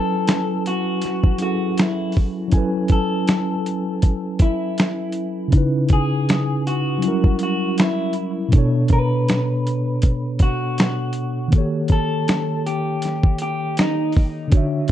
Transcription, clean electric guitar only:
Already playing: A4
0.67 F#4
1.42 F#4
1.80 E4
2.92 A4
4.42 E4
5.93 G#4
6.67 F#4
7.43 F#4
7.81 E4
8.93 B4
10.43 F#4
11.92 A4
12.66 G4
13.42 G4
13.79 D#4

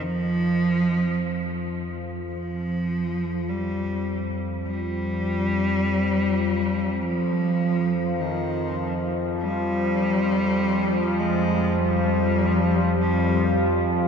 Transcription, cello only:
0.03 F3
2.33 F3
3.49 G3
4.66 G3
7.02 F3
8.21 D#3
9.40 G3
11.20 G#3
11.79 G3
12.99 G3

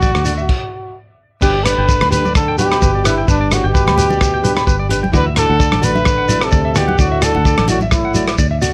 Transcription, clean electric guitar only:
0.02 D5
0.14 D6
0.25 D5
0.38 E5
1.42 B4
1.55 D5
1.65 B4
1.78 G5
1.88 B4
2.01 B5
2.12 B4
2.25 D5
2.48 G5
2.58 B4
2.71 B5
2.83 B4
2.95 D5
3.06 B4
3.18 G5
3.28 B4
3.41 D5
3.64 G5
3.74 B4
3.88 B5
3.98 B4
4.10 D5
4.34 G5
4.44 B4
4.56 B5
4.67 B4
4.79 D5
4.91 B4
5.03 G5
5.14 D5
5.26 E5
5.38 D5
5.49 F#5
5.60 D5
5.72 D6
5.82 D5
5.95 E5
6.18 F#5
6.28 D5
6.41 D6
6.52 D5
6.65 E5
6.76 D5
6.88 F#5
6.98 D5
7.12 E5
7.22 D5
7.36 F#5
7.46 D5
7.59 D6
7.70 D5
7.82 E5
8.05 F#5
8.16 D5
8.28 D6
8.38 D5
8.51 E5
8.62 D5

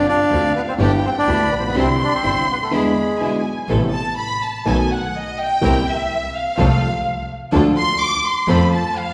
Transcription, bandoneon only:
0.09 D4 D5
0.56 B3 B4
0.68 C4 C5
0.82 D4 D5
1.05 C4 C5
1.18 D4 D5
1.52 B3 B4
1.59 C5
1.67 B3 B4
1.79 C4 C5
2.03 D4 D5
2.15 C4 C5
2.51 B3 B4
2.62 A3 A4
2.74 G#3 G#4

